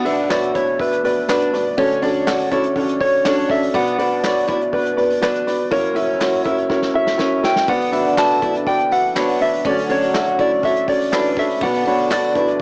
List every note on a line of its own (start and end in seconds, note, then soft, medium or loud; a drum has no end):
0.00 1.73 B1 medium
0.00 1.73 B2 medium
0.00 0.04 B3 loud
0.00 0.25 B3 medium
0.00 0.04 D4 medium
0.00 0.04 F#4 medium
0.00 0.05 B4 medium
0.00 1.05 D5 loud
0.00 0.33 F#5 loud
0.04 0.25 D4 medium
0.04 0.29 D4 medium
0.04 0.25 F#4 medium
0.04 0.25 B4 medium
0.04 0.25 E5 loud
0.04 hi-hat pedal medium
0.04 open hi-hat medium
0.18 open hi-hat soft
0.29 0.50 B3 medium
0.29 0.50 D4 medium
0.29 0.50 F#4 medium
0.29 0.54 F#4 medium
0.29 0.50 B4 medium
0.29 0.50 C#5 medium
0.29 0.55 D5 medium
0.29 snare loud
0.29 clap medium
0.29 hi-hat pedal medium
0.29 open hi-hat loud
0.43 hi-hat pedal medium
0.53 0.74 B3 medium
0.53 0.75 D4 medium
0.53 0.67 E4 medium
0.53 0.75 F#4 medium
0.53 0.75 B4 medium
0.53 0.83 C#5 medium
0.53 0.75 E5 medium
0.53 kick medium
0.53 hi-hat pedal medium
0.53 open hi-hat medium
0.67 open hi-hat medium
0.79 0.99 B3 medium
0.79 0.99 D4 medium
0.79 1.00 F#4 medium
0.79 0.99 B4 medium
0.79 1.04 B4 loud
0.79 1.00 E5 medium
0.79 kick loud
0.79 hi-hat pedal medium
0.79 open hi-hat loud
0.92 hi-hat pedal medium
1.04 1.24 B3 medium
1.04 1.24 D4 medium
1.04 1.24 F#4 medium
1.04 1.24 B4 medium
1.04 1.27 B4 medium
1.04 1.25 D5 medium
1.04 hi-hat pedal medium
1.04 open hi-hat medium
1.17 open hi-hat soft
1.28 1.49 B3 loud
1.28 1.63 D4 medium
1.28 1.49 D4 medium
1.28 1.49 F#4 medium
1.28 1.49 B4 medium
1.28 1.80 B4 medium
1.28 1.49 D5 loud
1.28 snare loud
1.28 clap medium
1.28 hi-hat pedal medium
1.28 open hi-hat medium
1.41 hi-hat pedal medium
1.53 1.73 B3 medium
1.53 1.73 D4 medium
1.53 1.73 F#4 medium
1.53 1.74 B4 medium
1.53 1.74 D5 medium
1.53 snare soft
1.53 hi-hat pedal medium
1.53 open hi-hat medium
1.66 open hi-hat medium
1.77 3.71 D2 medium
1.77 3.70 D3 medium
1.77 1.98 C#4 loud
1.77 2.01 C#4 loud
1.77 1.98 D4 medium
1.77 1.98 F#4 medium
1.77 1.98 A4 medium
1.77 1.98 C#5 loud
1.77 3.00 C#5 loud
1.77 kick loud
1.77 hi-hat pedal medium
1.77 open hi-hat medium
1.91 hi-hat pedal medium
2.02 2.22 C#4 medium
2.02 2.22 D4 medium
2.02 2.26 D4 medium
2.02 2.23 F#4 medium
2.02 2.23 A4 medium
2.02 2.23 D5 loud
2.02 hi-hat pedal medium
2.02 open hi-hat medium
2.15 open hi-hat soft
2.26 2.47 C#4 medium
2.26 2.47 D4 medium
2.26 2.47 F#4 medium
2.26 2.50 F#4 medium
2.26 2.47 A4 medium
2.26 2.47 D5 medium
2.26 snare loud
2.26 clap medium
2.26 hi-hat pedal medium
2.26 open hi-hat loud
2.39 hi-hat pedal medium
2.39 open hi-hat soft
2.51 2.71 C#4 medium
2.51 2.72 D4 medium
2.51 2.63 E4 medium
2.51 2.72 F#4 medium
2.51 2.72 A4 medium
2.51 2.72 C#5 loud
2.51 kick medium
2.51 hi-hat pedal medium
2.51 open hi-hat medium
2.63 hi-hat pedal medium
2.63 open hi-hat medium
2.75 2.96 C#4 medium
2.75 2.96 D4 medium
2.75 2.96 F#4 medium
2.75 2.96 A4 medium
2.75 2.96 C#5 loud
2.75 kick loud
2.75 hi-hat pedal medium
2.75 open hi-hat loud
2.88 hi-hat pedal medium
3.00 3.21 C#4 medium
3.00 3.21 D4 medium
3.00 3.21 F#4 medium
3.00 3.21 A4 medium
3.00 3.21 C#5 medium
3.00 3.53 C#5 loud
3.00 kick loud
3.00 hi-hat pedal medium
3.00 open hi-hat medium
3.13 open hi-hat soft
3.25 3.45 C#4 loud
3.25 3.45 D4 medium
3.25 3.60 D4 loud
3.25 3.45 F#4 medium
3.25 3.46 A4 medium
3.25 3.46 C#5 loud
3.25 snare loud
3.25 clap medium
3.25 hi-hat pedal medium
3.25 open hi-hat medium
3.37 hi-hat pedal medium
3.37 open hi-hat soft
3.49 3.69 C#4 medium
3.49 3.70 D4 medium
3.49 3.70 F#4 medium
3.49 3.70 A4 medium
3.49 3.70 C#5 medium
3.49 3.77 E5 loud
3.49 kick loud
3.49 snare soft
3.49 hi-hat pedal medium
3.49 open hi-hat medium
3.62 hi-hat pedal medium
3.62 open hi-hat medium
3.74 5.67 B1 medium
3.74 5.67 B2 medium
3.74 3.94 B3 loud
3.74 3.98 B3 loud
3.74 3.94 D4 medium
3.74 3.94 F#4 medium
3.74 3.95 B4 medium
3.74 3.95 D5 loud
3.74 4.24 F#5 loud
3.74 kick loud
3.74 hi-hat pedal medium
3.74 open hi-hat medium
3.87 hi-hat pedal medium
3.98 4.19 B3 medium
3.98 4.19 D4 medium
3.98 4.23 D4 medium
3.98 4.19 F#4 medium
3.98 4.19 B4 medium
3.98 4.19 D5 loud
3.98 hi-hat pedal medium
3.98 open hi-hat medium
4.12 open hi-hat medium
4.23 4.44 B3 medium
4.23 4.44 D4 medium
4.23 4.44 F#4 medium
4.23 4.47 F#4 medium
4.23 4.44 B4 medium
4.23 4.44 C#5 medium
4.23 4.70 D5 loud
4.23 snare loud
4.23 clap medium
4.23 hi-hat pedal medium
4.23 open hi-hat loud
4.36 hi-hat pedal medium
4.36 open hi-hat soft
4.48 4.68 B3 medium
4.48 4.68 D4 medium
4.48 4.60 E4 medium
4.48 4.68 F#4 medium
4.48 4.69 B4 medium
4.48 4.69 D5 medium
4.48 kick medium
4.48 hi-hat pedal medium
4.48 open hi-hat medium
4.61 hi-hat pedal medium
4.61 open hi-hat medium
4.72 4.93 B3 medium
4.72 4.93 D4 medium
4.72 4.93 F#4 medium
4.72 4.93 B4 medium
4.72 5.19 B4 loud
4.72 4.93 D5 medium
4.72 kick loud
4.72 hi-hat pedal medium
4.72 open hi-hat medium
4.85 hi-hat pedal medium
4.85 open hi-hat soft
4.97 5.17 B3 medium
4.97 5.17 D4 medium
4.97 5.17 F#4 medium
4.97 5.18 B4 medium
4.97 5.18 D5 medium
4.97 hi-hat pedal medium
4.97 open hi-hat medium
5.10 hi-hat pedal medium
5.10 open hi-hat soft
5.21 5.42 B3 loud
5.21 5.42 D4 medium
5.21 5.57 D4 medium
5.21 5.42 F#4 medium
5.21 5.42 B4 medium
5.21 5.74 B4 loud
5.21 5.42 D5 loud
5.21 snare loud
5.21 clap medium
5.35 hi-hat pedal medium
5.46 5.67 B3 medium
5.46 5.67 D4 medium
5.46 5.67 F#4 medium
5.46 5.67 B4 medium
5.46 5.67 D5 medium
5.46 snare soft
5.46 hi-hat pedal medium
5.46 open hi-hat medium
5.60 open hi-hat medium
5.71 7.64 F#1 medium
5.71 7.64 F#2 medium
5.71 5.95 A#3 loud
5.71 5.91 C#4 loud
5.71 5.91 E4 medium
5.71 5.91 F#4 medium
5.71 5.91 A#4 medium
5.71 5.92 C#5 loud
5.71 6.95 C#5 loud
5.71 kick loud
5.71 hi-hat pedal medium
5.71 open hi-hat medium
5.84 hi-hat pedal medium
5.95 6.16 C#4 medium
5.95 6.19 C#4 medium
5.95 6.16 E4 medium
5.95 6.16 F#4 medium
5.95 6.16 A#4 medium
5.95 6.16 E5 loud
5.95 hi-hat pedal medium
5.95 open hi-hat medium
6.09 open hi-hat medium
6.19 6.40 C#4 medium
6.19 6.40 E4 medium
6.19 6.40 F#4 medium
6.19 6.44 F#4 medium
6.19 6.41 A#4 medium
6.19 6.41 C#5 medium
6.19 snare loud
6.19 clap medium
6.19 hi-hat pedal medium
6.19 open hi-hat loud
6.33 hi-hat pedal medium
6.33 open hi-hat soft
6.44 6.65 C#4 medium
6.44 6.56 E4 medium
6.44 6.65 E4 medium
6.44 6.65 F#4 medium
6.44 6.65 A#4 medium
6.44 6.66 E5 loud
6.44 kick medium
6.44 hi-hat pedal medium
6.44 open hi-hat medium
6.57 hi-hat pedal medium
6.57 open hi-hat medium
6.69 6.90 C#4 medium
6.69 6.90 E4 medium
6.69 6.90 F#4 medium
6.69 6.90 A#4 medium
6.69 6.90 C#5 loud
6.69 kick loud
6.69 snare medium
6.82 snare medium
6.94 7.14 C#4 medium
6.94 7.14 E4 medium
6.94 7.14 F#4 medium
6.94 7.14 A#4 medium
6.94 7.14 C#5 medium
6.94 7.46 E5 loud
7.07 snare medium
7.17 7.38 C#4 loud
7.17 7.54 C#4 medium
7.17 7.39 E4 medium
7.17 7.39 F#4 medium
7.17 7.39 A#4 medium
7.17 7.39 C#5 loud
7.17 snare medium
7.43 7.63 C#4 medium
7.43 7.63 E4 medium
7.43 7.63 F#4 medium
7.43 7.64 A#4 medium
7.43 7.64 E5 medium
7.43 7.69 G5 loud
7.43 snare loud
7.56 snare loud
7.68 9.61 B1 medium
7.68 9.61 B2 medium
7.68 9.37 D3 medium
7.68 7.91 B3 loud
7.68 7.88 B3 loud
7.68 9.37 D4 loud
7.68 7.89 D4 medium
7.68 7.89 F#4 medium
7.68 7.89 B4 medium
7.68 7.89 D5 loud
7.68 8.20 F#5 loud
7.68 kick loud
7.68 hi-hat pedal medium
7.68 open hi-hat loud
7.81 hi-hat pedal medium
7.81 open hi-hat soft
7.92 8.12 B3 medium
7.92 8.13 D4 medium
7.92 8.16 D4 medium
7.92 8.13 F#4 medium
7.92 8.13 B4 medium
7.92 8.13 E5 loud
7.92 hi-hat pedal medium
7.92 open hi-hat medium
8.05 hi-hat pedal medium
8.05 open hi-hat soft
8.17 8.37 B3 medium
8.17 8.37 D4 medium
8.17 8.37 F#4 medium
8.17 8.41 F#4 medium
8.17 8.38 B4 medium
8.17 8.38 D5 medium
8.17 8.69 A5 loud
8.17 snare loud
8.17 clap medium
8.17 hi-hat pedal medium
8.17 open hi-hat loud
8.30 hi-hat pedal medium
8.30 open hi-hat soft
8.41 8.62 B3 medium
8.41 8.62 D4 medium
8.41 8.54 E4 medium
8.41 8.62 F#4 medium
8.41 8.62 B4 medium
8.41 8.62 D5 medium
8.41 kick medium
8.41 hi-hat pedal medium
8.41 open hi-hat medium
8.54 hi-hat pedal medium
8.54 open hi-hat medium
8.66 8.87 B3 medium
8.66 8.87 D4 medium
8.66 8.87 F#4 medium
8.66 8.87 B4 medium
8.66 8.87 D5 medium
8.66 8.92 G5 loud
8.66 kick loud
8.66 hi-hat pedal medium
8.66 open hi-hat loud
8.79 hi-hat pedal medium
8.91 9.11 B3 medium
8.91 9.11 D4 medium
8.91 9.12 F#4 medium
8.91 9.12 B4 medium
8.91 9.12 E5 medium
8.91 9.43 F#5 loud
8.91 hi-hat pedal medium
8.91 open hi-hat medium
9.04 open hi-hat soft
9.15 9.36 B3 loud
9.15 9.36 D4 medium
9.15 9.50 D4 medium
9.15 9.36 F#4 medium
9.15 9.36 B4 medium
9.15 9.36 C#5 loud
9.15 snare loud
9.15 clap medium
9.15 hi-hat pedal medium
9.15 open hi-hat medium
9.28 hi-hat pedal medium
9.28 open hi-hat soft
9.40 9.60 B3 medium
9.40 9.60 D4 medium
9.40 9.61 F#4 medium
9.40 9.61 B4 medium
9.40 9.61 D5 medium
9.40 9.68 E5 loud
9.40 hi-hat pedal medium
9.40 open hi-hat medium
9.53 hi-hat pedal medium
9.53 open hi-hat medium
9.65 11.58 D2 medium
9.65 11.58 D3 medium
9.65 10.85 F#3 medium
9.65 9.85 C#4 loud
9.65 9.88 C#4 loud
9.65 9.85 D4 medium
9.65 10.85 F#4 loud
9.65 9.85 F#4 medium
9.65 9.85 A4 medium
9.65 9.85 C#5 loud
9.65 9.93 D5 loud
9.65 kick loud
9.65 hi-hat pedal medium
9.65 open hi-hat medium
9.77 hi-hat pedal medium
9.77 open hi-hat soft
9.89 10.09 C#4 loud
9.89 10.09 D4 medium
9.89 10.13 D4 medium
9.89 10.10 F#4 medium
9.89 10.09 A4 medium
9.89 10.10 C#5 loud
9.89 10.40 C#5 loud
9.89 hi-hat pedal medium
9.89 open hi-hat medium
10.02 hi-hat pedal medium
10.02 open hi-hat medium
10.13 10.34 C#4 medium
10.13 10.34 D4 medium
10.13 10.34 F#4 medium
10.13 10.38 F#4 medium
10.13 10.34 A4 medium
10.13 10.34 E5 medium
10.13 snare loud
10.13 clap medium
10.13 hi-hat pedal medium
10.13 open hi-hat loud
10.27 hi-hat pedal medium
10.38 10.59 C#4 medium
10.38 10.59 D4 medium
10.38 10.51 E4 medium
10.38 10.59 F#4 medium
10.38 10.59 A4 medium
10.38 10.59 C#5 medium
10.38 10.66 D5 loud
10.38 kick medium
10.38 hi-hat pedal medium
10.38 open hi-hat medium
10.51 open hi-hat medium
10.62 10.83 C#4 medium
10.62 10.83 D4 medium
10.62 10.83 F#4 medium
10.62 10.83 A4 medium
10.62 10.83 C#5 medium
10.62 10.91 E5 loud
10.62 kick loud
10.62 hi-hat pedal medium
10.62 open hi-hat loud
10.76 hi-hat pedal medium
10.76 open hi-hat soft
10.88 11.08 C#4 medium
10.88 11.08 D4 medium
10.88 11.08 F#4 medium
10.88 11.08 A4 medium
10.88 11.08 C#5 medium
10.88 11.40 D5 loud
10.88 kick loud
10.88 hi-hat pedal medium
10.88 open hi-hat medium
11.00 hi-hat pedal medium
11.00 open hi-hat soft
11.12 11.37 E3 medium
11.12 11.32 C#4 loud
11.12 11.32 D4 medium
11.12 11.47 D4 medium
11.12 11.37 E4 medium
11.12 11.33 F#4 medium
11.12 11.32 A4 medium
11.12 11.33 B4 loud
11.12 snare loud
11.12 clap medium
11.12 hi-hat pedal medium
11.12 open hi-hat loud
11.24 hi-hat pedal medium
11.24 open hi-hat soft
11.37 11.57 C#4 medium
11.37 11.57 D4 medium
11.37 11.57 F#4 medium
11.37 11.57 A4 medium
11.37 11.58 C#5 medium
11.37 11.62 E5 loud
11.37 kick loud
11.37 snare soft
11.37 hi-hat pedal medium
11.37 open hi-hat medium
11.49 hi-hat pedal medium
11.49 open hi-hat medium
11.61 12.62 B1 medium
11.61 12.62 B2 medium
11.61 12.62 D3 medium
11.61 11.85 B3 loud
11.61 11.82 B3 loud
11.61 12.62 D4 loud
11.61 11.82 D4 medium
11.61 11.82 F#4 medium
11.61 11.82 B4 medium
11.61 11.82 D5 loud
11.61 12.13 F#5 loud
11.61 kick loud
11.61 hi-hat pedal medium
11.61 open hi-hat loud
11.74 hi-hat pedal medium
11.74 open hi-hat soft
11.86 12.07 B3 loud
11.86 12.09 D4 medium
11.86 12.07 D4 medium
11.86 12.07 F#4 medium
11.86 12.07 B4 medium
11.86 12.07 C#5 loud
11.86 hi-hat pedal medium
11.86 open hi-hat loud
11.98 hi-hat pedal medium
11.98 open hi-hat medium
12.10 12.31 B3 medium
12.10 12.31 D4 medium
12.10 12.34 F#4 medium
12.10 12.31 F#4 medium
12.10 12.32 B4 medium
12.10 12.60 D5 loud
12.10 12.32 D5 medium
12.10 snare loud
12.10 clap medium
12.10 hi-hat pedal medium
12.10 open hi-hat loud
12.23 hi-hat pedal medium
12.23 open hi-hat soft
12.35 12.56 B3 medium
12.35 12.56 D4 medium
12.35 12.47 E4 medium
12.35 12.56 F#4 medium
12.35 12.56 B4 medium
12.35 12.56 D5 medium
12.35 kick medium
12.35 hi-hat pedal medium
12.35 open hi-hat medium
12.48 hi-hat pedal medium
12.48 open hi-hat medium